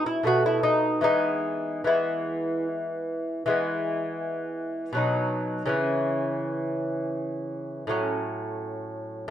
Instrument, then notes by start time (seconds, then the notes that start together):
lute
Already playing: B2 G#3
0.06 E4
0.23 B2 A3 B3 F#4
0.46 E4
0.63 D#4
1.01 E3 G#3 B3 D#4
1.84 E3 G#3 B3 E4
3.46 E3 G#3 B3
4.93 B2 F#3
4.97 D#4
5.66 C#3 E3 C#4
7.87 A2 F#3 C#4